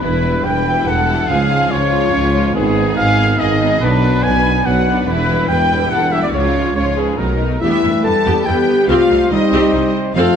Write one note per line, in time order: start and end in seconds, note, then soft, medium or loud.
0.02 0.40 E1 medium
0.02 0.40 E2 medium
0.02 0.45 B2 medium
0.02 0.44 E3 medium
0.02 0.45 G3 medium
0.02 0.44 E4 medium
0.02 0.46 E4 medium
0.02 0.44 B4 medium
0.02 0.46 B4 medium
0.24 0.65 G3 medium
0.24 0.65 E4 medium
0.43 0.82 E1 medium
0.43 0.82 E2 medium
0.43 1.28 B2 medium
0.43 1.28 E3 medium
0.43 0.85 B4 medium
0.43 0.86 G5 medium
0.43 0.89 G5 medium
0.43 0.88 G5 medium
0.48 1.29 G3 medium
0.48 1.29 E4 medium
0.66 1.07 G3 medium
0.66 1.07 E4 medium
0.85 1.23 E1 medium
0.85 1.24 E1 medium
0.85 1.24 E2 medium
0.85 1.30 A4 medium
0.85 1.27 F#5 medium
0.85 1.29 F#5 medium
0.90 1.31 F#5 medium
1.08 1.29 G3 medium
1.08 1.29 E4 medium
1.28 1.66 C#2 medium
1.28 1.70 G#2 medium
1.28 1.71 F3 medium
1.28 1.48 G#3 medium
1.28 1.70 G#3 medium
1.28 1.70 C#4 medium
1.28 1.48 F4 medium
1.28 1.71 G#4 medium
1.28 1.70 F5 medium
1.28 1.73 F5 medium
1.28 1.71 F5 medium
1.49 1.90 G#3 medium
1.49 1.90 F4 medium
1.71 2.08 C#2 medium
1.71 2.54 G#2 medium
1.71 2.54 F3 medium
1.71 2.53 G#3 medium
1.71 2.53 C#4 medium
1.71 2.55 F4 medium
1.71 2.26 C#5 medium
1.71 2.54 C#5 loud
1.71 2.56 C#5 medium
1.91 2.32 G#3 medium
1.91 2.33 F4 medium
2.13 2.50 C#2 medium
2.33 2.54 G#3 medium
2.33 2.54 F4 medium
2.54 2.92 G#1 medium
2.54 3.37 G#2 medium
2.54 2.92 G#2 medium
2.54 3.37 D#3 medium
2.54 2.96 B3 medium
2.54 3.25 B3 medium
2.54 3.25 D#4 medium
2.54 2.96 G#4 medium
2.54 2.97 G#4 medium
2.75 3.16 B3 medium
2.75 3.16 D#4 medium
2.97 3.34 G#1 medium
2.97 3.34 G#2 medium
2.97 3.38 G#4 medium
2.97 3.39 F5 medium
2.97 3.41 F5 loud
2.97 3.40 F5 medium
3.17 3.58 B3 medium
3.17 3.58 D#4 medium
3.39 3.76 G#1 medium
3.39 3.76 G#2 medium
3.39 3.80 G#2 medium
3.39 3.81 D#3 medium
3.39 3.81 B3 medium
3.39 3.82 D#4 medium
3.39 3.80 G#4 medium
3.39 3.81 D#5 medium
3.59 3.79 B3 medium
3.59 3.80 D#4 medium
3.80 4.18 B1 medium
3.80 4.63 F#2 medium
3.80 4.18 B2 medium
3.80 4.63 F#3 medium
3.80 4.00 B3 medium
3.80 4.64 B3 medium
3.80 4.00 D4 medium
3.80 4.65 D4 medium
3.80 4.24 D4 medium
3.80 4.22 B4 loud
3.80 4.25 B4 loud
3.80 4.24 B4 medium
4.01 4.43 B3 medium
4.01 4.43 D4 medium
4.22 4.60 B1 medium
4.22 4.61 B2 medium
4.22 4.64 B4 medium
4.22 4.65 G#5 medium
4.22 4.67 G#5 loud
4.22 4.65 G#5 medium
4.45 4.86 B3 medium
4.45 4.86 D4 medium
4.64 5.02 B1 medium
4.64 5.06 F#2 medium
4.64 5.03 B2 medium
4.64 5.06 F#3 medium
4.64 5.07 B3 medium
4.64 5.07 D4 medium
4.64 5.07 B4 medium
4.64 5.06 F#5 medium
4.64 4.95 F#5 medium
4.64 5.08 F#5 medium
4.87 5.07 B3 medium
4.87 5.07 D4 medium
5.06 5.44 E1 medium
5.06 5.45 E1 medium
5.06 5.45 E2 medium
5.06 5.37 G2 medium
5.06 5.37 E3 medium
5.06 5.49 B3 medium
5.06 5.50 E4 medium
5.06 5.49 E4 medium
5.06 5.48 B4 medium
5.06 5.49 B4 medium
5.29 5.69 G3 medium
5.29 5.68 E4 medium
5.48 5.86 E1 medium
5.48 5.87 E1 medium
5.48 5.87 E2 medium
5.48 6.33 G2 medium
5.48 6.32 E3 medium
5.48 5.91 B3 medium
5.48 6.33 E4 medium
5.48 5.91 B4 medium
5.48 5.91 G5 medium
5.48 5.90 G5 loud
5.48 5.91 G5 medium
5.70 6.11 G3 medium
5.70 6.10 E4 medium
5.90 6.29 E1 medium
5.90 6.29 E2 medium
5.90 6.34 A3 medium
5.90 6.13 A4 medium
5.90 6.12 F#5 medium
5.90 6.14 F#5 medium
5.90 6.13 F#5 medium
6.11 6.33 G3 medium
6.11 6.33 E4 medium
6.11 6.22 E5 medium
6.11 6.23 E5 medium
6.15 6.19 G4 medium
6.22 6.34 F#4 medium
6.22 6.33 D5 medium
6.22 6.27 D5 medium
6.22 6.28 D5 medium
6.32 6.71 C#2 medium
6.32 6.74 G#2 medium
6.32 6.71 C#3 medium
6.32 6.74 F3 medium
6.32 6.53 G#3 medium
6.32 6.75 G#3 medium
6.32 6.74 C#4 medium
6.32 6.54 F4 medium
6.32 6.75 C#5 medium
6.32 6.73 C#5 medium
6.32 6.76 C#5 medium
6.37 6.77 F4 medium
6.54 6.95 G#3 medium
6.54 6.95 F4 medium
6.74 7.14 C#2 medium
6.74 7.18 G#2 medium
6.74 7.14 C#3 medium
6.74 7.18 F3 medium
6.74 7.18 G#3 medium
6.74 7.18 C#4 medium
6.74 6.96 C#5 medium
6.74 6.85 C#5 medium
6.74 6.98 C#5 medium
6.79 6.98 F4 medium
6.95 7.18 G#3 soft
6.95 7.20 B3 medium
6.95 7.18 F4 medium
6.95 7.18 G#4 medium
6.95 7.20 G#4 medium
6.95 7.19 G#4 medium
7.16 7.57 B1 medium
7.16 7.40 F#2 medium
7.16 7.57 B2 medium
7.16 7.40 F#3 medium
7.16 7.38 A3 soft
7.16 7.40 A3 medium
7.16 7.38 D#4 medium
7.16 7.62 D#4 medium
7.16 7.41 D#4 medium
7.16 7.61 A#4 medium
7.40 7.61 A3 soft
7.40 7.61 D#4 medium
7.61 7.70 E1 medium
7.61 7.69 E2 medium
7.61 8.43 E3 medium
7.61 8.43 G3 medium
7.61 8.01 A3 medium
7.61 7.81 B3 medium
7.61 8.01 E4 medium
7.61 7.82 G4 medium
7.61 8.43 B4 medium
7.61 8.01 E5 medium
7.61 8.02 E5 medium
7.83 7.92 E1 medium
7.83 7.91 E2 medium
7.83 7.91 G3 medium
7.83 7.91 E4 medium
8.03 8.13 E1 medium
8.03 8.12 E2 medium
8.03 8.11 E3 medium
8.03 8.46 G3 medium
8.03 8.12 B3 medium
8.03 8.45 A4 loud
8.03 8.45 A5 medium
8.03 8.48 A5 loud
8.03 8.47 A5 medium
8.25 8.34 E1 medium
8.25 8.34 E2 medium
8.25 8.45 B3 medium
8.25 8.45 G4 medium
8.45 8.54 E1 medium
8.45 8.55 E2 medium
8.45 8.67 E3 medium
8.45 8.88 G3 medium
8.45 8.54 G3 medium
8.45 8.88 B3 medium
8.45 8.54 E4 medium
8.45 8.89 G4 loud
8.45 8.91 B4 medium
8.45 8.88 G5 medium
8.45 8.89 G5 medium
8.68 8.89 D3 medium
8.88 8.97 C2 loud
8.88 8.98 C2 loud
8.88 9.30 C3 medium
8.88 9.29 G3 medium
8.88 9.32 A3 medium
8.88 9.09 C4 medium
8.88 9.30 F4 loud
8.88 9.09 G4 medium
8.88 9.32 C5 medium
8.88 9.30 F5 medium
8.88 9.31 F5 loud
9.10 9.18 C2 medium
9.10 9.18 G3 medium
9.10 9.18 D#4 medium
9.30 9.39 C2 medium
9.30 9.40 C2 medium
9.30 10.13 C3 medium
9.30 9.40 D#3 medium
9.30 10.13 G3 medium
9.30 10.15 G3 medium
9.30 9.40 C4 medium
9.30 9.93 D#4 loud
9.30 10.14 C5 loud
9.30 9.93 D#5 medium
9.30 9.94 D#5 medium
9.51 9.60 C2 loud
9.51 9.72 C4 loud
9.51 9.72 G4 loud
9.73 9.81 C2 medium
9.73 9.81 G3 medium
9.73 9.81 D#4 medium
10.15 10.24 F1 loud
10.15 10.23 F2 loud
10.15 10.36 C3 medium
10.15 10.36 F3 loud
10.15 10.36 A3 medium
10.15 10.36 C4 loud
10.15 10.36 F4 loud
10.15 10.36 A4 loud
10.15 10.36 C5 medium
10.15 10.36 F5 loud
10.15 10.36 F5 medium
10.15 10.36 F5 loud